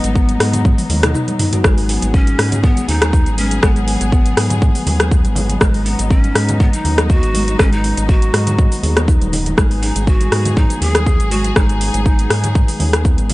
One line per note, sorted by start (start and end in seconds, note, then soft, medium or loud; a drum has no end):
0.00 0.37 G#1 loud
0.00 13.34 F#3 medium
0.00 1.36 B3 loud
0.00 13.34 B3 medium
0.00 1.63 D#4 medium
0.00 closed hi-hat medium
0.04 muted conga medium
0.04 shaker medium
0.15 0.27 B3 medium
0.15 kick loud
0.15 shaker medium
0.29 closed hi-hat soft
0.29 high conga medium
0.29 shaker soft
0.40 0.74 G#2 medium
0.40 0.53 G#3 medium
0.40 cross-stick medium
0.40 open hi-hat medium
0.40 shaker medium
0.53 closed hi-hat medium
0.53 low conga loud
0.53 shaker medium
0.65 0.77 D#3 loud
0.65 kick loud
0.65 high tom medium
0.65 high conga medium
0.65 shaker medium
0.78 open hi-hat medium
0.78 high tom medium
0.78 muted conga soft
0.78 shaker medium
0.90 1.15 D#2 loud
0.90 0.97 G#3 medium
0.90 open hi-hat medium
0.90 high conga medium
0.90 low conga medium
0.90 shaker medium
1.03 1.13 D#4 medium
1.03 cross-stick medium
1.03 closed hi-hat medium
1.03 mid tom medium
1.03 shaker medium
1.14 1.27 D#4 loud
1.14 mid tom medium
1.14 muted conga soft
1.14 shaker medium
1.28 closed hi-hat soft
1.28 high conga medium
1.28 shaker medium
1.39 1.47 D#4 loud
1.39 mid tom medium
1.39 open hi-hat medium
1.39 low conga loud
1.39 shaker medium
1.52 1.64 F#4 loud
1.52 closed hi-hat medium
1.52 mid tom medium
1.52 muted conga medium
1.52 high conga medium
1.52 low conga medium
1.52 shaker medium
1.64 1.98 G#1 loud
1.64 1.76 G#3 loud
1.64 5.60 G#4 medium
1.64 kick loud
1.64 cross-stick loud
1.64 high conga medium
1.64 shaker loud
1.78 open hi-hat medium
1.78 shaker medium
1.89 2.16 B3 medium
1.89 2.01 C#4 medium
1.89 open hi-hat loud
1.89 shaker medium
2.02 2.35 G#1 loud
2.02 closed hi-hat medium
2.02 muted conga medium
2.02 shaker medium
2.14 2.26 B3 medium
2.14 2.63 C#4 loud
2.14 kick loud
2.14 shaker medium
2.27 closed hi-hat soft
2.27 high conga medium
2.27 shaker medium
2.38 2.73 G#2 loud
2.38 2.51 G#3 medium
2.38 cross-stick medium
2.38 open hi-hat loud
2.38 muted conga soft
2.38 shaker medium
2.52 closed hi-hat medium
2.52 low conga loud
2.52 shaker medium
2.63 2.75 D#3 loud
2.63 2.90 B3 loud
2.63 kick loud
2.63 high conga medium
2.63 low conga loud
2.63 shaker medium
2.77 closed hi-hat soft
2.77 muted conga medium
2.77 shaker medium
2.88 3.28 D#2 loud
2.88 3.00 C#4 medium
2.88 3.38 D#4 loud
2.88 open hi-hat medium
2.88 low conga medium
2.88 shaker medium
3.02 cross-stick loud
3.02 closed hi-hat medium
3.02 high conga medium
3.02 shaker medium
3.13 3.25 B3 medium
3.13 kick loud
3.13 muted conga soft
3.13 shaker medium
3.26 3.59 G#1 medium
3.26 closed hi-hat soft
3.26 shaker medium
3.38 3.50 G#3 medium
3.38 3.64 C#4 loud
3.38 open hi-hat medium
3.38 high conga medium
3.38 shaker medium
3.51 closed hi-hat medium
3.51 muted conga medium
3.51 shaker medium
3.62 3.97 G#1 loud
3.62 3.75 G#3 loud
3.62 5.36 B3 loud
3.62 kick loud
3.62 cross-stick loud
3.62 high conga medium
3.62 shaker loud
3.76 closed hi-hat soft
3.76 shaker medium
3.87 3.99 C#4 medium
3.87 open hi-hat medium
3.87 shaker medium
4.01 4.34 G#1 loud
4.01 closed hi-hat medium
4.01 muted conga medium
4.01 shaker medium
4.12 4.24 B3 medium
4.12 kick loud
4.12 shaker medium
4.26 closed hi-hat soft
4.26 shaker medium
4.37 4.71 G#2 loud
4.37 4.50 G#3 medium
4.37 cross-stick medium
4.37 open hi-hat medium
4.37 shaker medium
4.50 closed hi-hat medium
4.50 low conga loud
4.50 shaker medium
4.62 4.74 D#3 loud
4.62 kick loud
4.62 high conga medium
4.62 shaker medium
4.75 open hi-hat medium
4.75 muted conga medium
4.75 shaker loud
4.86 5.26 D#2 loud
4.86 4.98 C#4 medium
4.86 open hi-hat medium
4.86 high conga medium
4.86 low conga medium
4.86 shaker medium
5.00 cross-stick medium
5.00 closed hi-hat medium
5.00 shaker medium
5.11 5.23 B3 medium
5.11 kick loud
5.11 muted conga soft
5.11 shaker medium
5.24 5.58 G#1 medium
5.24 closed hi-hat soft
5.24 high conga medium
5.24 shaker medium
5.35 5.49 G#3 medium
5.35 open hi-hat medium
5.35 low conga loud
5.35 shaker loud
5.49 closed hi-hat medium
5.49 muted conga medium
5.49 high conga medium
5.49 low conga medium
5.49 shaker medium
5.60 5.95 G#1 loud
5.60 5.73 G#3 loud
5.60 9.56 D#4 medium
5.60 kick loud
5.60 cross-stick loud
5.60 high conga medium
5.60 shaker loud
5.74 open hi-hat soft
5.74 shaker medium
5.86 6.11 B3 medium
5.86 5.98 C#4 medium
5.86 open hi-hat medium
5.86 shaker medium
5.99 6.32 G#1 loud
5.99 closed hi-hat medium
5.99 muted conga soft
5.99 shaker loud
6.10 6.22 B3 medium
6.10 6.61 C#4 loud
6.10 kick loud
6.10 shaker medium
6.24 closed hi-hat soft
6.24 high conga medium
6.24 shaker medium
6.35 6.70 G#2 loud
6.35 6.48 G#3 medium
6.35 cross-stick medium
6.35 open hi-hat medium
6.35 muted conga soft
6.35 shaker medium
6.49 closed hi-hat medium
6.49 low conga loud
6.49 shaker loud
6.60 6.72 D#3 loud
6.60 6.73 B3 loud
6.60 kick loud
6.60 high conga medium
6.60 low conga loud
6.60 shaker medium
6.73 7.07 D#4 loud
6.73 closed hi-hat soft
6.73 muted conga medium
6.73 shaker loud
6.85 7.24 D#2 loud
6.85 6.97 C#4 medium
6.85 open hi-hat medium
6.85 low conga loud
6.85 shaker medium
6.98 cross-stick medium
6.98 closed hi-hat soft
6.98 high conga medium
6.98 shaker medium
7.10 7.22 B3 medium
7.10 7.61 F#4 loud
7.10 kick loud
7.10 shaker medium
7.23 7.56 G#1 medium
7.23 closed hi-hat soft
7.23 shaker medium
7.34 7.47 G#3 medium
7.34 open hi-hat medium
7.34 high conga medium
7.34 shaker loud
7.48 closed hi-hat medium
7.48 muted conga medium
7.48 shaker medium
7.59 7.93 G#1 loud
7.59 7.71 G#3 loud
7.59 7.74 C#4 loud
7.59 kick loud
7.59 cross-stick loud
7.59 high conga medium
7.59 shaker loud
7.72 8.10 D#4 loud
7.72 closed hi-hat soft
7.72 shaker medium
7.84 7.96 C#4 medium
7.84 open hi-hat medium
7.84 shaker medium
7.97 8.30 G#1 loud
7.97 closed hi-hat medium
7.97 muted conga soft
7.97 shaker loud
8.09 8.21 B3 medium
8.09 9.08 F#4 loud
8.09 kick loud
8.09 shaker medium
8.22 closed hi-hat soft
8.22 shaker medium
8.33 8.68 G#2 loud
8.33 8.46 G#3 medium
8.33 cross-stick medium
8.33 open hi-hat medium
8.33 shaker medium
8.47 closed hi-hat medium
8.47 low conga loud
8.47 shaker medium
8.58 8.70 D#3 loud
8.58 kick loud
8.58 high conga medium
8.58 shaker medium
8.72 open hi-hat medium
8.72 muted conga medium
8.72 shaker loud
8.83 9.17 D#2 loud
8.83 8.95 G#4 medium
8.83 open hi-hat medium
8.83 high conga medium
8.83 low conga medium
8.83 shaker medium
8.96 9.07 B3 loud
8.96 cross-stick medium
8.96 closed hi-hat medium
8.96 shaker medium
9.08 9.20 D#4 medium
9.08 kick loud
9.08 muted conga soft
9.08 shaker medium
9.21 9.54 D#1 loud
9.21 9.32 D#3 medium
9.21 closed hi-hat soft
9.21 high conga medium
9.21 shaker medium
9.32 9.45 D#4 medium
9.32 open hi-hat medium
9.32 low conga loud
9.32 shaker loud
9.46 closed hi-hat medium
9.46 muted conga soft
9.46 high conga medium
9.46 low conga medium
9.46 shaker medium
9.57 9.92 G#1 loud
9.57 9.69 G#3 loud
9.57 13.34 G#4 medium
9.57 kick loud
9.57 cross-stick medium
9.57 high conga medium
9.57 shaker loud
9.71 open hi-hat soft
9.71 shaker medium
9.82 9.94 C#4 medium
9.82 10.09 D#4 medium
9.82 open hi-hat medium
9.82 shaker medium
9.95 10.29 G#1 loud
9.95 closed hi-hat medium
9.95 muted conga medium
9.95 shaker loud
10.07 10.19 B3 medium
10.07 10.58 F#4 loud
10.07 kick loud
10.07 shaker medium
10.21 closed hi-hat soft
10.21 high conga medium
10.21 shaker medium
10.32 10.66 G#2 medium
10.32 10.45 G#3 medium
10.32 cross-stick medium
10.32 open hi-hat medium
10.32 muted conga soft
10.32 shaker medium
10.45 closed hi-hat medium
10.45 low conga loud
10.45 shaker medium
10.56 10.69 D#3 loud
10.56 10.83 D#4 loud
10.56 kick loud
10.56 high conga medium
10.56 low conga loud
10.56 shaker medium
10.70 closed hi-hat soft
10.70 muted conga medium
10.70 shaker loud
10.81 11.21 D#2 loud
10.81 10.94 C#4 medium
10.81 11.33 G#4 loud
10.81 open hi-hat medium
10.81 low conga medium
10.81 shaker medium
10.95 cross-stick medium
10.95 closed hi-hat medium
10.95 high conga medium
10.95 shaker medium
11.06 11.18 B3 medium
11.06 kick loud
11.06 shaker medium
11.19 11.53 G#1 medium
11.19 closed hi-hat soft
11.19 shaker medium
11.31 11.44 G#3 medium
11.31 11.58 F#4 loud
11.31 open hi-hat medium
11.31 high conga medium
11.31 shaker medium
11.44 closed hi-hat medium
11.44 muted conga medium
11.44 shaker medium
11.56 11.90 G#1 loud
11.56 11.68 G#3 loud
11.56 13.30 D#4 loud
11.56 kick loud
11.56 cross-stick medium
11.56 high conga medium
11.56 shaker medium
11.69 closed hi-hat soft
11.69 shaker medium
11.81 11.93 C#4 medium
11.81 open hi-hat medium
11.81 shaker medium
11.94 12.27 G#1 loud
11.94 closed hi-hat medium
11.94 muted conga medium
11.94 shaker medium
12.06 12.17 B3 medium
12.06 kick loud
12.06 shaker medium
12.19 closed hi-hat soft
12.19 shaker soft
12.30 12.65 G#2 loud
12.30 12.43 G#3 medium
12.30 cross-stick medium
12.30 open hi-hat medium
12.30 shaker soft
12.44 closed hi-hat medium
12.44 low conga loud
12.44 shaker medium
12.55 12.67 D#3 loud
12.55 kick loud
12.55 high conga medium
12.55 shaker soft
12.68 open hi-hat medium
12.68 muted conga medium
12.68 shaker medium
12.79 13.19 D#2 loud
12.79 12.92 C#4 medium
12.79 open hi-hat medium
12.79 high conga medium
12.79 low conga medium
12.79 shaker medium
12.93 cross-stick medium
12.93 closed hi-hat medium
12.93 shaker medium
13.05 13.17 B3 medium
13.05 kick loud
13.05 muted conga soft
13.05 shaker medium
13.18 13.34 G#1 medium
13.18 closed hi-hat soft
13.18 high conga medium
13.18 shaker medium
13.30 13.34 G#3 medium
13.30 open hi-hat medium
13.30 low conga loud
13.30 shaker medium